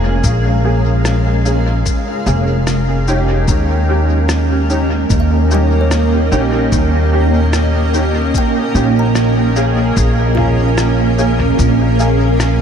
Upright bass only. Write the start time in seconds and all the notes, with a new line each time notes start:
Already playing: F1
0.24 A#1
2.26 F1
3.48 D#2
5.10 D#2
6.32 A#1
6.72 D#2
8.75 A#1
9.97 A#1
11.59 A#1